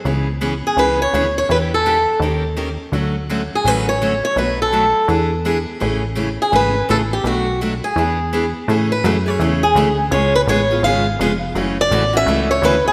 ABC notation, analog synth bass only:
X:1
M:4/4
L:1/8
Q:"Swing" 1/4=167
K:A
V:1 name="Analog synth bass" clef=bass
C,,4 C,,2 D,,2 | E,,4 ^D,,4 | D,,4 A,,,4 | B,,,4 E,,4 |
A,,,4 G,,,2 A,,,2 | B,,,4 E,,4 | A,,2 F,,2 E,,2 D,,2 | C,,2 A,,,2 G,,,2 ^E,,,2 |
F,,,2 A,,,2 C,,2 D,, D,, |]